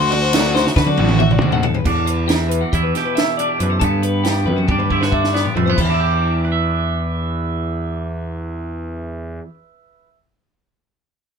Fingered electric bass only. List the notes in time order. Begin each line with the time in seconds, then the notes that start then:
Already playing: D2
0.76 D3
0.99 A1
1.42 D#2
1.86 E2
2.73 E2
3.60 F#2
3.81 G2
4.45 F#2
4.68 G2
5.56 F2
5.78 E2